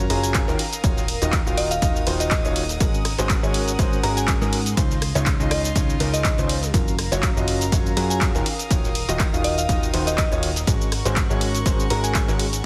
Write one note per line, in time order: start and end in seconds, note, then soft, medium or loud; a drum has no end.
0.00 2.77 A#4 medium
0.00 2.77 F5 medium
0.00 0.57 A#5 medium
0.10 0.45 F#1 medium
0.10 0.45 F#3 loud
0.10 0.45 C#4 medium
0.10 0.45 F4 medium
0.10 0.45 F#4 medium
0.10 0.45 G#4 loud
0.10 0.21 A#5 medium
0.10 closed hi-hat medium
0.10 open hi-hat loud
0.10 ride medium
0.23 0.37 G#5 medium
0.23 closed hi-hat medium
0.23 shaker medium
0.34 kick loud
0.34 snare loud
0.34 clap loud
0.34 closed hi-hat medium
0.34 ride medium
0.34 shaker medium
0.48 0.56 D#1 loud
0.48 0.58 D#3 medium
0.48 0.58 C#4 medium
0.48 0.58 F4 medium
0.48 0.58 F#4 medium
0.48 0.58 A#4 loud
0.48 snare medium
0.48 shaker soft
0.59 4.73 D#6 medium
0.59 closed hi-hat medium
0.59 open hi-hat loud
0.59 ride medium
0.73 closed hi-hat soft
0.73 closed hi-hat medium
0.73 shaker medium
0.84 1.19 D#1 loud
0.84 1.01 D#3 medium
0.84 1.01 D#4 medium
0.84 1.01 F4 medium
0.84 1.01 F#4 medium
0.84 1.01 C#5 medium
0.84 kick loud
0.84 closed hi-hat medium
0.84 ride medium
0.84 shaker medium
0.97 snare soft
0.97 shaker soft
1.08 closed hi-hat medium
1.08 open hi-hat loud
1.08 ride medium
1.22 1.44 D#1 loud
1.22 1.38 D#3 loud
1.22 1.38 D#4 medium
1.22 1.38 F4 medium
1.22 1.38 F#4 medium
1.22 1.38 D#5 loud
1.22 closed hi-hat medium
1.22 shaker medium
1.32 kick loud
1.32 snare loud
1.32 clap loud
1.32 closed hi-hat medium
1.32 ride medium
1.32 shaker medium
1.46 1.80 D#1 loud
1.46 1.73 D#3 medium
1.46 1.73 D#4 medium
1.46 1.73 F4 medium
1.46 1.73 F#4 medium
1.46 1.73 F5 loud
1.46 shaker soft
1.57 1.68 D#5 medium
1.57 closed hi-hat medium
1.57 open hi-hat loud
1.57 ride medium
1.71 1.84 F5 medium
1.71 closed hi-hat medium
1.71 shaker medium
1.82 2.04 D#1 loud
1.82 1.99 D#3 loud
1.82 1.99 D#4 medium
1.82 1.99 F4 medium
1.82 1.99 F#4 medium
1.82 1.99 D#5 loud
1.82 kick loud
1.82 closed hi-hat medium
1.82 ride medium
1.82 shaker medium
1.96 shaker soft
2.07 2.42 D#1 medium
2.07 2.41 D#3 loud
2.07 2.41 D#4 medium
2.07 2.42 F4 medium
2.07 2.41 F#4 medium
2.07 2.41 C5 loud
2.07 closed hi-hat medium
2.07 open hi-hat loud
2.07 ride medium
2.20 2.29 D#5 medium
2.20 snare medium
2.20 closed hi-hat medium
2.20 shaker medium
2.31 2.80 D#5 medium
2.31 kick loud
2.31 snare loud
2.31 clap loud
2.31 closed hi-hat medium
2.31 ride medium
2.31 shaker medium
2.45 2.78 D#1 loud
2.45 2.61 D#3 medium
2.45 2.61 D#4 medium
2.45 2.61 F4 medium
2.45 2.61 F#4 medium
2.45 2.61 C#5 loud
2.45 closed hi-hat soft
2.45 shaker soft
2.56 closed hi-hat medium
2.56 open hi-hat loud
2.56 ride medium
2.69 snare medium
2.69 closed hi-hat medium
2.69 shaker medium
2.80 3.16 G#1 loud
2.80 2.98 G#3 medium
2.80 2.98 C#4 medium
2.80 2.98 F#4 medium
2.80 2.98 G#4 medium
2.80 4.75 A#4 medium
2.80 2.98 A#4 medium
2.80 4.75 F#5 medium
2.80 kick loud
2.80 closed hi-hat medium
2.80 ride medium
2.80 shaker medium
2.94 shaker soft
3.05 cross-stick medium
3.05 snare soft
3.05 closed hi-hat medium
3.05 open hi-hat loud
3.05 ride medium
3.18 3.40 G#1 medium
3.18 3.34 G#3 loud
3.18 3.34 C#4 medium
3.18 3.34 F#4 medium
3.18 3.34 G#4 medium
3.18 3.34 C5 loud
3.18 snare medium
3.18 closed hi-hat medium
3.18 shaker medium
3.29 kick loud
3.29 snare loud
3.29 clap loud
3.29 closed hi-hat medium
3.29 ride medium
3.29 shaker medium
3.43 3.77 G#1 loud
3.43 3.70 G#3 medium
3.43 3.70 C#4 medium
3.43 3.70 F#4 medium
3.43 3.70 G#4 medium
3.43 3.70 C#5 loud
3.43 shaker soft
3.54 closed hi-hat medium
3.54 open hi-hat loud
3.54 ride medium
3.68 closed hi-hat medium
3.68 shaker medium
3.79 4.01 G#1 loud
3.79 3.96 G#3 loud
3.79 3.96 C#4 medium
3.79 3.96 F#4 medium
3.79 3.96 G#4 medium
3.79 3.96 C5 loud
3.79 kick loud
3.79 closed hi-hat medium
3.79 ride medium
3.79 shaker medium
3.93 shaker soft
4.03 4.39 G#1 medium
4.03 4.38 G#3 loud
4.03 4.38 C#4 medium
4.03 4.38 F#4 medium
4.03 4.38 G#4 medium
4.03 4.38 A#4 loud
4.03 4.14 A#5 loud
4.03 closed hi-hat medium
4.03 open hi-hat loud
4.03 ride medium
4.17 4.30 G#5 medium
4.17 closed hi-hat medium
4.17 shaker medium
4.28 kick loud
4.28 snare loud
4.28 clap loud
4.28 closed hi-hat medium
4.28 ride medium
4.28 shaker medium
4.41 4.75 G#2 loud
4.41 4.57 G#3 medium
4.41 4.57 C#4 medium
4.41 4.57 F#4 medium
4.41 4.57 G#4 medium
4.41 4.57 A#4 loud
4.41 snare medium
4.41 shaker soft
4.53 closed hi-hat medium
4.53 open hi-hat loud
4.53 ride medium
4.66 closed hi-hat soft
4.66 closed hi-hat medium
4.66 shaker medium
4.77 5.13 C#2 loud
4.77 4.95 C#3 medium
4.77 4.95 C#4 medium
4.77 4.95 D#4 medium
4.77 6.72 F4 medium
4.77 4.95 F4 medium
4.77 4.95 C5 medium
4.77 6.72 D#5 medium
4.77 6.72 C6 medium
4.77 kick loud
4.77 closed hi-hat medium
4.77 closed hi-hat soft
4.77 ride medium
4.77 shaker medium
4.91 snare soft
4.91 shaker soft
5.02 cross-stick medium
5.02 closed hi-hat medium
5.02 open hi-hat loud
5.02 ride medium
5.15 5.37 C#2 loud
5.15 5.31 C#3 loud
5.15 5.31 C#4 medium
5.15 5.31 D#4 medium
5.15 5.31 F4 medium
5.15 5.31 C#5 loud
5.15 closed hi-hat medium
5.15 shaker medium
5.26 kick loud
5.26 snare loud
5.26 clap loud
5.26 closed hi-hat medium
5.26 ride medium
5.26 shaker medium
5.40 5.73 C#2 loud
5.40 5.66 C#3 medium
5.40 5.66 C#4 medium
5.40 5.66 D#4 medium
5.40 5.66 F4 medium
5.40 5.66 D#5 loud
5.40 shaker soft
5.51 5.62 D#5 medium
5.51 cross-stick medium
5.51 closed hi-hat medium
5.51 open hi-hat loud
5.51 ride medium
5.65 closed hi-hat medium
5.65 shaker medium
5.76 5.98 C#2 loud
5.76 5.93 C#3 loud
5.76 5.93 C#4 medium
5.76 5.93 D#4 medium
5.76 5.93 F4 medium
5.76 5.93 C#5 loud
5.76 kick loud
5.76 closed hi-hat medium
5.76 closed hi-hat soft
5.76 ride medium
5.76 shaker medium
5.90 shaker soft
6.00 6.35 C#2 medium
6.00 6.35 C#3 loud
6.00 6.35 C#4 medium
6.00 6.35 D#4 medium
6.00 6.35 F4 medium
6.00 6.35 A#4 loud
6.00 closed hi-hat medium
6.00 open hi-hat loud
6.00 ride medium
6.14 6.63 D#5 medium
6.14 snare medium
6.14 closed hi-hat medium
6.14 shaker medium
6.24 kick loud
6.24 snare loud
6.24 clap loud
6.24 closed hi-hat medium
6.24 ride medium
6.24 shaker medium
6.38 6.72 C#2 loud
6.38 6.54 C#3 medium
6.38 6.54 C#4 medium
6.38 6.54 D#4 medium
6.38 6.54 F4 medium
6.38 6.54 C5 loud
6.38 closed hi-hat soft
6.38 shaker soft
6.49 closed hi-hat medium
6.49 open hi-hat loud
6.49 ride medium
6.63 snare medium
6.63 closed hi-hat medium
6.63 shaker medium
6.74 7.09 F#1 medium
6.74 6.91 F#3 medium
6.74 6.91 C#4 medium
6.74 6.91 F4 medium
6.74 6.91 F#4 medium
6.74 10.63 A#4 medium
6.74 6.91 A#4 medium
6.74 10.63 F5 medium
6.74 8.44 A#5 medium
6.74 kick loud
6.74 closed hi-hat medium
6.74 ride medium
6.74 shaker medium
6.88 shaker soft
6.99 cross-stick medium
6.99 snare soft
6.99 closed hi-hat medium
6.99 open hi-hat loud
6.99 ride medium
7.12 7.34 F#1 loud
7.12 7.28 F#3 loud
7.12 7.28 C#4 medium
7.12 7.28 F4 medium
7.12 7.28 F#4 medium
7.12 7.28 C#5 loud
7.12 snare soft
7.12 closed hi-hat medium
7.12 shaker medium
7.23 kick loud
7.23 snare loud
7.23 clap loud
7.23 closed hi-hat medium
7.23 ride medium
7.23 shaker medium
7.36 7.70 F#1 loud
7.36 7.63 F#3 medium
7.36 7.63 C#4 medium
7.36 7.63 F4 medium
7.36 7.63 F#4 medium
7.36 7.63 D#5 loud
7.36 shaker soft
7.48 snare soft
7.48 closed hi-hat medium
7.48 open hi-hat loud
7.48 ride medium
7.61 closed hi-hat medium
7.61 shaker medium
7.72 7.95 F#1 loud
7.72 7.90 F#3 loud
7.72 7.90 C#4 medium
7.72 7.90 F4 medium
7.72 7.90 F#4 medium
7.72 7.90 C#5 loud
7.72 kick loud
7.72 closed hi-hat medium
7.72 ride medium
7.72 shaker medium
7.86 shaker soft
7.97 8.32 F#2 medium
7.97 8.32 F#3 loud
7.97 8.32 C#4 medium
7.97 8.32 F4 medium
7.97 8.32 F#4 medium
7.97 8.32 G#4 loud
7.97 8.08 A#5 medium
7.97 closed hi-hat medium
7.97 open hi-hat loud
7.97 ride medium
8.10 8.24 G#5 medium
8.10 closed hi-hat medium
8.10 shaker medium
8.21 kick loud
8.21 snare loud
8.21 clap loud
8.21 closed hi-hat medium
8.21 ride medium
8.21 shaker medium
8.35 8.42 D#1 loud
8.35 8.45 D#3 medium
8.35 8.45 C#4 medium
8.35 8.45 F4 medium
8.35 8.45 F#4 medium
8.35 8.45 A#4 loud
8.35 snare medium
8.35 shaker soft
8.46 10.65 D#6 medium
8.46 closed hi-hat medium
8.46 open hi-hat loud
8.46 ride medium
8.59 closed hi-hat medium
8.59 closed hi-hat soft
8.59 shaker medium
8.71 9.06 D#1 loud
8.71 8.88 D#3 medium
8.71 8.88 D#4 medium
8.71 8.88 F4 medium
8.71 8.88 F#4 medium
8.71 8.88 C#5 medium
8.71 kick loud
8.71 closed hi-hat medium
8.71 ride medium
8.71 shaker medium
8.84 snare soft
8.84 shaker soft
8.95 closed hi-hat medium
8.95 open hi-hat loud
8.95 ride medium
9.09 9.31 D#1 loud
9.09 9.25 D#3 loud
9.09 9.25 D#4 medium
9.09 9.25 F4 medium
9.09 9.25 F#4 medium
9.09 9.25 D#5 loud
9.09 closed hi-hat medium
9.09 shaker medium
9.19 kick loud
9.19 snare loud
9.19 clap loud
9.19 closed hi-hat medium
9.19 ride medium
9.19 shaker medium
9.33 9.67 D#1 loud
9.33 9.60 D#3 medium
9.33 9.60 D#4 medium
9.33 9.60 F4 medium
9.33 9.60 F#4 medium
9.33 9.60 F5 loud
9.33 shaker soft
9.44 9.55 D#5 medium
9.44 closed hi-hat medium
9.44 open hi-hat loud
9.44 ride medium
9.58 9.71 F5 medium
9.58 closed hi-hat medium
9.58 shaker medium
9.69 9.91 D#1 loud
9.69 9.86 D#3 loud
9.69 9.86 D#4 medium
9.69 9.86 F4 medium
9.69 9.86 F#4 medium
9.69 9.86 D#5 loud
9.69 kick loud
9.69 closed hi-hat medium
9.69 ride medium
9.69 shaker medium
9.83 shaker soft
9.94 10.29 D#1 loud
9.94 10.28 D#3 loud
9.94 10.28 D#4 medium
9.94 10.28 F4 medium
9.94 10.28 F#4 medium
9.94 10.28 C5 loud
9.94 closed hi-hat medium
9.94 open hi-hat loud
9.94 ride medium
10.07 10.16 D#5 medium
10.07 snare medium
10.07 closed hi-hat medium
10.07 shaker medium
10.18 10.67 D#5 medium
10.18 kick loud
10.18 snare loud
10.18 clap loud
10.18 closed hi-hat medium
10.18 ride medium
10.18 shaker medium
10.32 10.65 D#1 loud
10.32 10.48 D#3 medium
10.32 10.48 D#4 medium
10.32 10.48 F4 medium
10.32 10.48 F#4 medium
10.32 10.48 C#5 loud
10.32 closed hi-hat soft
10.32 shaker soft
10.43 closed hi-hat medium
10.43 open hi-hat loud
10.43 ride medium
10.56 snare medium
10.56 closed hi-hat medium
10.56 shaker medium
10.67 11.03 G#1 loud
10.67 10.85 G#3 medium
10.67 10.85 C#4 medium
10.67 10.85 F#4 medium
10.67 10.85 G#4 medium
10.67 12.62 A#4 medium
10.67 10.85 A#4 medium
10.67 12.62 F#5 medium
10.67 12.62 C#6 medium
10.67 kick loud
10.67 closed hi-hat medium
10.67 ride medium
10.67 shaker medium
10.81 shaker soft
10.92 cross-stick medium
10.92 snare soft
10.92 closed hi-hat medium
10.92 open hi-hat loud
10.92 ride medium
11.05 11.27 G#1 loud
11.05 11.21 G#3 loud
11.05 11.21 C#4 medium
11.05 11.21 F#4 medium
11.05 11.21 G#4 medium
11.05 11.21 C5 loud
11.05 snare medium
11.05 closed hi-hat medium
11.05 shaker medium
11.16 kick loud
11.16 snare loud
11.16 clap loud
11.16 closed hi-hat medium
11.16 ride medium
11.16 shaker medium
11.30 11.63 G#1 loud
11.30 11.56 G#3 medium
11.30 11.56 C#4 medium
11.30 11.56 F#4 medium
11.30 11.56 G#4 medium
11.30 11.56 C#5 loud
11.30 shaker soft
11.41 closed hi-hat medium
11.41 open hi-hat loud
11.41 ride medium
11.55 closed hi-hat medium
11.55 shaker medium
11.66 11.88 G#1 loud
11.66 11.83 G#3 loud
11.66 11.83 C#4 medium
11.66 11.83 F#4 medium
11.66 11.83 G#4 medium
11.66 11.83 C5 loud
11.66 kick loud
11.66 closed hi-hat medium
11.66 ride medium
11.66 shaker medium
11.80 shaker soft
11.90 12.26 G#1 loud
11.90 12.25 G#3 loud
11.90 12.25 C#4 medium
11.90 12.25 F#4 loud
11.90 12.25 G#4 medium
11.90 12.25 A#4 loud
11.90 12.01 A#5 loud
11.90 closed hi-hat medium
11.90 open hi-hat loud
11.90 ride medium
12.04 12.17 G#5 medium
12.04 closed hi-hat medium
12.04 shaker medium
12.14 kick loud
12.14 snare loud
12.14 clap loud
12.14 closed hi-hat medium
12.14 ride medium
12.14 shaker medium
12.28 12.62 G#1 loud
12.28 12.44 G#3 medium
12.28 12.44 C#4 medium
12.28 12.44 F#4 medium
12.28 12.44 G#4 medium
12.28 12.44 A#4 loud
12.28 snare medium
12.28 shaker soft
12.39 closed hi-hat medium
12.39 open hi-hat loud
12.39 ride medium
12.53 closed hi-hat medium
12.53 closed hi-hat soft
12.53 shaker medium